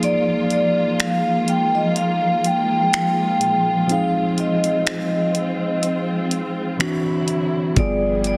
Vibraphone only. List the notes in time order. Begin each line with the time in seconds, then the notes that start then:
0.04 D5
0.52 D5
1.01 F5
1.49 G5
1.75 D#5
1.97 F5
2.46 G5
3.92 F5
4.40 D#5
4.66 D#5
7.78 D5
8.27 D5